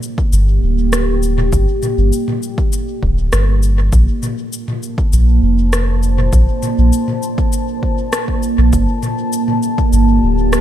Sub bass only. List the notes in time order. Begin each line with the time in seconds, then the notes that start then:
0.32 G1
0.63 D1
1.53 G1
1.98 G1
3.03 D1
3.33 G1
3.93 A#1
5.13 A#1
5.43 F1
6.33 A#1
6.78 A#1
8.58 A#1
8.73 G1
9.93 G1
10.23 D1